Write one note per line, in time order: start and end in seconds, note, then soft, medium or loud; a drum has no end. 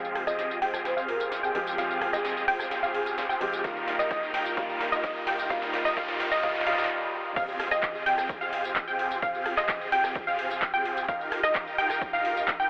0.00 0.25 F1 medium
0.00 1.52 F3 medium
0.00 1.52 G#3 medium
0.00 0.24 C4 medium
0.00 1.52 C4 medium
0.00 0.24 F4 medium
0.00 0.24 G4 medium
0.00 0.24 G#4 medium
0.00 0.24 F5 loud
0.00 0.24 F5 medium
0.00 1.53 G5 medium
0.00 riser medium
0.05 tambourine soft
0.15 cross-stick medium
0.15 open hi-hat loud
0.27 0.60 F1 medium
0.27 0.59 C4 medium
0.27 0.59 F4 medium
0.27 0.59 G4 medium
0.27 0.59 G#4 medium
0.27 0.59 D#5 loud
0.27 0.35 D#5 medium
0.27 cross-stick medium
0.27 closed hi-hat medium
0.27 tambourine medium
0.39 0.46 D#5 medium
0.39 snare soft
0.39 closed hi-hat medium
0.39 tambourine medium
0.51 tambourine soft
0.62 0.95 F1 medium
0.62 0.94 C4 medium
0.62 0.94 F4 medium
0.62 0.94 G4 medium
0.62 0.94 G#4 medium
0.62 0.94 G5 loud
0.62 open hi-hat loud
0.74 cross-stick medium
0.74 closed hi-hat medium
0.74 tambourine medium
0.85 0.99 C5 medium
0.85 snare soft
0.85 closed hi-hat medium
0.85 tambourine medium
0.97 1.41 F1 medium
0.97 1.41 C4 medium
0.97 1.41 F4 medium
0.97 1.41 G4 medium
0.97 1.41 G#4 medium
0.97 1.41 F5 medium
0.97 tambourine soft
1.08 1.22 A#4 medium
1.08 open hi-hat loud
1.20 closed hi-hat medium
1.20 tambourine medium
1.32 snare medium
1.32 closed hi-hat medium
1.32 tambourine medium
1.43 1.76 F1 medium
1.43 1.75 C4 medium
1.43 1.76 F4 medium
1.43 1.75 G4 medium
1.43 1.51 G#4 medium
1.43 1.75 G#4 medium
1.43 1.75 G5 loud
1.43 tambourine soft
1.54 1.75 F3 medium
1.54 1.75 G#3 medium
1.54 1.76 C4 medium
1.54 1.76 G4 medium
1.54 1.62 G#4 medium
1.54 open hi-hat loud
1.67 closed hi-hat medium
1.67 tambourine medium
1.77 2.11 F1 medium
1.77 3.38 F3 medium
1.77 3.38 G#3 medium
1.77 2.10 C4 medium
1.77 3.39 C4 medium
1.77 2.10 F4 medium
1.77 2.10 G4 medium
1.77 2.10 G#4 medium
1.77 2.10 F5 medium
1.77 2.10 F5 loud
1.77 3.39 G5 medium
1.77 snare medium
1.77 closed hi-hat medium
1.77 tambourine soft
1.91 tambourine soft
2.02 cross-stick medium
2.02 open hi-hat loud
2.13 2.46 F1 loud
2.13 2.45 C4 medium
2.13 2.45 F4 medium
2.13 2.45 G4 medium
2.13 2.27 G#4 medium
2.13 2.45 G#4 medium
2.13 2.45 D#5 medium
2.13 2.45 D#5 loud
2.13 cross-stick medium
2.13 closed hi-hat medium
2.13 tambourine medium
2.25 snare medium
2.25 closed hi-hat medium
2.25 tambourine medium
2.37 tambourine soft
2.48 2.81 F1 medium
2.48 2.80 C4 loud
2.48 2.80 F4 medium
2.48 2.80 G4 medium
2.48 2.80 G#4 medium
2.48 2.80 G5 loud
2.48 open hi-hat loud
2.60 cross-stick medium
2.60 closed hi-hat soft
2.60 tambourine medium
2.71 snare medium
2.71 closed hi-hat medium
2.71 tambourine medium
2.83 3.27 F1 medium
2.83 3.27 C4 medium
2.83 3.27 F4 medium
2.83 3.27 G4 medium
2.83 3.27 G#4 medium
2.83 3.27 F5 medium
2.83 tambourine soft
2.94 3.02 G#4 medium
2.94 open hi-hat loud
3.06 3.14 G#4 medium
3.06 closed hi-hat medium
3.06 tambourine medium
3.18 snare medium
3.18 closed hi-hat medium
3.18 tambourine medium
3.29 3.62 F1 loud
3.29 3.62 C4 medium
3.29 3.62 F4 medium
3.29 3.62 G4 medium
3.29 3.62 G#4 medium
3.29 3.62 G5 loud
3.29 tambourine soft
3.40 3.61 F3 medium
3.40 3.61 G#3 medium
3.40 3.62 C4 medium
3.40 3.62 G4 loud
3.40 open hi-hat loud
3.53 closed hi-hat medium
3.53 tambourine medium
3.63 3.97 D#1 medium
3.63 4.55 D#3 medium
3.63 4.55 G3 medium
3.63 4.56 A#3 medium
3.63 3.96 D#4 medium
3.63 3.96 F4 medium
3.63 4.56 F4 medium
3.63 3.96 G4 medium
3.63 3.96 A#4 medium
3.63 3.96 F5 medium
3.63 kick loud
3.63 snare medium
3.63 closed hi-hat medium
3.63 tambourine medium
3.77 tambourine soft
3.88 snare medium
3.88 open hi-hat loud
3.99 4.32 D#1 loud
3.99 4.31 D#4 medium
3.99 4.31 F4 medium
3.99 4.31 G4 medium
3.99 4.31 A#4 medium
3.99 4.07 D#5 medium
3.99 4.31 D#5 medium
3.99 closed hi-hat soft
3.99 tambourine medium
4.11 4.18 D#5 medium
4.11 kick loud
4.11 snare medium
4.11 closed hi-hat medium
4.11 tambourine medium
4.23 tambourine soft
4.34 4.55 D#1 medium
4.34 4.55 D#4 medium
4.34 4.55 F4 medium
4.34 4.55 G4 medium
4.34 4.55 A#4 medium
4.34 4.55 G5 loud
4.34 snare medium
4.34 open hi-hat loud
4.46 closed hi-hat soft
4.46 tambourine medium
4.56 4.90 D#1 loud
4.56 5.48 D#3 medium
4.56 5.48 G3 medium
4.56 5.49 A#3 medium
4.56 4.89 D#4 medium
4.56 4.89 F4 medium
4.56 5.49 F4 medium
4.56 4.89 G4 medium
4.56 4.89 A#4 medium
4.56 4.89 F5 medium
4.56 kick loud
4.56 snare medium
4.56 closed hi-hat medium
4.56 tambourine medium
4.70 tambourine soft
4.80 snare medium
4.80 open hi-hat loud
4.92 5.25 D#1 loud
4.92 5.24 D#4 medium
4.92 5.24 F4 medium
4.92 5.24 G4 medium
4.92 5.24 A#4 medium
4.92 5.24 D#5 medium
4.92 5.00 D#5 medium
4.92 closed hi-hat medium
4.92 tambourine medium
5.04 5.11 D#5 medium
5.04 kick loud
5.04 snare medium
5.04 closed hi-hat medium
5.04 tambourine medium
5.16 tambourine soft
5.27 5.48 D#1 loud
5.27 5.48 D#4 loud
5.27 5.48 F4 medium
5.27 5.48 G4 medium
5.27 5.48 A#4 medium
5.27 5.48 G5 loud
5.27 snare medium
5.27 open hi-hat loud
5.39 closed hi-hat medium
5.39 tambourine medium
5.49 5.83 D#1 loud
5.49 5.94 D#3 medium
5.49 5.95 G3 medium
5.49 5.95 A#3 medium
5.49 5.82 D#4 medium
5.49 5.82 F4 medium
5.49 5.96 F4 medium
5.49 5.82 G4 medium
5.49 5.82 A#4 medium
5.49 5.82 F5 loud
5.49 kick loud
5.49 snare medium
5.49 closed hi-hat medium
5.49 tambourine medium
5.49 noise sweep medium
5.62 snare medium
5.62 tambourine soft
5.74 snare medium
5.74 open hi-hat loud
5.85 5.95 D#1 loud
5.85 5.95 D#4 medium
5.85 5.95 F4 medium
5.85 5.95 G4 medium
5.85 5.95 A#4 medium
5.85 5.95 D#5 loud
5.85 5.93 D#5 medium
5.85 snare medium
5.85 closed hi-hat soft
5.85 tambourine medium
5.96 6.29 D#1 loud
5.96 6.41 D#3 medium
5.96 6.41 G3 medium
5.96 6.42 A#3 medium
5.96 6.29 D#4 medium
5.96 6.29 F4 medium
5.96 6.42 F4 medium
5.96 6.29 G4 medium
5.96 6.29 A#4 medium
5.96 6.29 F5 loud
5.96 6.29 F5 medium
5.96 kick loud
5.96 snare medium
5.96 closed hi-hat medium
5.96 tambourine medium
6.08 snare medium
6.08 tambourine soft
6.20 snare medium
6.20 open hi-hat loud
6.32 6.41 D#1 loud
6.32 6.42 D#4 medium
6.32 6.42 F4 medium
6.32 6.42 G4 medium
6.32 6.42 A#4 medium
6.32 6.41 D#5 loud
6.32 6.39 D#5 medium
6.32 6.42 D#5 loud
6.32 snare medium
6.32 tambourine medium
6.42 6.64 D#3 medium
6.42 6.64 G3 medium
6.42 6.65 A#3 medium
6.42 6.65 D#4 medium
6.42 6.65 F4 medium
6.42 6.65 G4 medium
6.42 6.65 A#4 medium
6.42 6.51 D#5 medium
6.42 6.65 F5 medium
6.42 kick loud
6.42 snare loud
6.42 closed hi-hat medium
6.42 tambourine medium
6.49 snare medium
6.55 6.62 D#5 medium
6.55 snare medium
6.55 closed hi-hat soft
6.55 tambourine soft
6.61 snare medium
6.65 6.87 D#3 medium
6.65 6.88 G3 medium
6.65 6.88 A#3 medium
6.65 6.88 D#4 medium
6.65 6.88 F4 medium
6.65 6.89 F4 loud
6.65 6.88 G4 medium
6.65 6.88 A#4 medium
6.65 6.74 D#5 medium
6.65 6.88 F5 loud
6.65 6.88 F5 medium
6.65 snare loud
6.65 open hi-hat loud
6.72 snare medium
6.78 6.86 D#5 medium
6.78 snare medium
6.78 open hi-hat medium
6.78 tambourine medium
6.84 snare loud
7.36 7.69 F1 medium
7.36 7.68 C4 medium
7.36 7.68 F4 medium
7.36 7.68 G4 medium
7.36 7.68 G#4 medium
7.36 7.68 F5 loud
7.36 kick loud
7.36 closed hi-hat medium
7.36 tambourine medium
7.36 crash loud
7.49 tambourine soft
7.60 cross-stick medium
7.60 open hi-hat loud
7.71 8.04 F1 loud
7.71 8.03 C4 medium
7.71 8.03 F4 medium
7.71 8.03 G4 medium
7.71 8.03 G#4 medium
7.71 8.03 D#5 medium
7.71 8.03 D#5 loud
7.71 cross-stick medium
7.71 closed hi-hat medium
7.71 tambourine medium
7.83 kick loud
7.83 clap loud
7.83 closed hi-hat medium
7.83 tambourine medium
7.95 tambourine soft
8.06 8.39 F1 medium
8.06 8.38 C4 medium
8.06 8.38 F4 medium
8.06 8.38 G4 medium
8.06 8.38 G#4 medium
8.06 8.38 G5 loud
8.06 open hi-hat loud
8.18 cross-stick medium
8.18 closed hi-hat medium
8.18 tambourine medium
8.29 kick loud
8.29 closed hi-hat medium
8.29 tambourine medium
8.41 8.85 F1 medium
8.41 8.85 C4 medium
8.41 8.85 F4 medium
8.41 8.85 G4 medium
8.41 8.85 G#4 medium
8.41 8.85 F5 medium
8.41 8.85 F5 loud
8.41 tambourine soft
8.53 open hi-hat loud
8.64 closed hi-hat medium
8.64 tambourine medium
8.76 kick loud
8.76 clap loud
8.76 closed hi-hat medium
8.76 tambourine medium
8.87 9.20 F1 loud
8.87 9.20 C4 loud
8.87 9.20 F4 medium
8.87 9.20 G4 medium
8.87 9.20 G#4 medium
8.87 9.20 G5 loud
8.87 tambourine soft
8.99 open hi-hat loud
9.11 closed hi-hat medium
9.11 tambourine medium
9.22 9.55 F1 loud
9.22 9.55 C4 medium
9.22 9.55 F4 medium
9.22 9.55 G#4 medium
9.22 9.55 F5 loud
9.22 kick loud
9.22 closed hi-hat medium
9.22 tambourine medium
9.35 tambourine soft
9.46 cross-stick medium
9.46 open hi-hat loud
9.57 9.90 F1 medium
9.57 9.89 C4 medium
9.57 9.89 F4 medium
9.57 9.89 G4 medium
9.57 9.89 G#4 medium
9.57 9.89 D#5 loud
9.57 cross-stick medium
9.57 clap soft
9.57 closed hi-hat medium
9.57 tambourine medium
9.69 kick loud
9.69 clap loud
9.69 closed hi-hat medium
9.69 tambourine medium
9.81 tambourine soft
9.92 10.25 F1 medium
9.92 10.24 C4 medium
9.92 10.24 F4 medium
9.92 10.24 G4 medium
9.92 10.24 G#4 medium
9.92 10.24 G5 loud
9.92 open hi-hat loud
10.04 cross-stick medium
10.04 closed hi-hat medium
10.04 tambourine medium
10.15 kick loud
10.15 closed hi-hat medium
10.15 tambourine medium
10.27 10.71 F1 loud
10.27 10.71 C4 medium
10.27 10.71 F4 medium
10.27 10.71 G4 medium
10.27 10.71 G#4 medium
10.27 10.71 F5 medium
10.27 tambourine soft
10.39 open hi-hat loud
10.50 closed hi-hat medium
10.50 tambourine medium
10.62 kick loud
10.62 clap loud
10.62 closed hi-hat medium
10.62 tambourine medium
10.74 11.06 F1 loud
10.74 11.06 C4 medium
10.74 11.06 F4 medium
10.74 11.06 G4 medium
10.74 11.06 G#4 medium
10.74 11.06 G5 loud
10.74 tambourine soft
10.85 open hi-hat loud
10.97 closed hi-hat medium
10.97 tambourine medium
11.08 11.41 D#1 medium
11.08 11.41 D#4 medium
11.08 11.41 F4 medium
11.08 11.41 G4 medium
11.08 11.41 A#4 medium
11.08 11.41 F5 loud
11.08 11.41 F5 medium
11.08 kick loud
11.08 closed hi-hat medium
11.08 tambourine medium
11.21 tambourine soft
11.32 cross-stick medium
11.32 open hi-hat loud
11.43 11.76 D#1 loud
11.43 11.75 D#4 medium
11.43 11.75 F4 medium
11.43 11.75 G4 medium
11.43 11.75 A#4 medium
11.43 11.75 D#5 loud
11.43 cross-stick medium
11.43 closed hi-hat medium
11.43 tambourine medium
11.55 kick loud
11.55 clap loud
11.55 closed hi-hat medium
11.55 tambourine medium
11.67 tambourine soft
11.78 12.11 D#1 medium
11.78 12.10 D#4 loud
11.78 12.10 F4 medium
11.78 12.10 G4 medium
11.78 12.10 A#4 medium
11.78 12.10 G5 loud
11.78 open hi-hat loud
11.90 cross-stick medium
11.90 closed hi-hat medium
11.90 tambourine medium
12.02 kick loud
12.02 closed hi-hat medium
12.02 tambourine medium
12.13 12.57 D#1 loud
12.13 12.57 D#4 medium
12.13 12.57 F4 medium
12.13 12.57 G4 medium
12.13 12.57 A#4 medium
12.13 12.57 F5 medium
12.13 tambourine soft
12.25 open hi-hat loud
12.36 closed hi-hat medium
12.36 tambourine medium
12.48 kick loud
12.48 clap loud
12.48 closed hi-hat medium
12.48 tambourine medium
12.60 12.70 D#1 medium
12.60 12.70 D#4 loud
12.60 12.70 F4 medium
12.60 12.70 G4 medium
12.60 12.70 A#4 medium
12.60 12.70 G5 loud
12.60 tambourine soft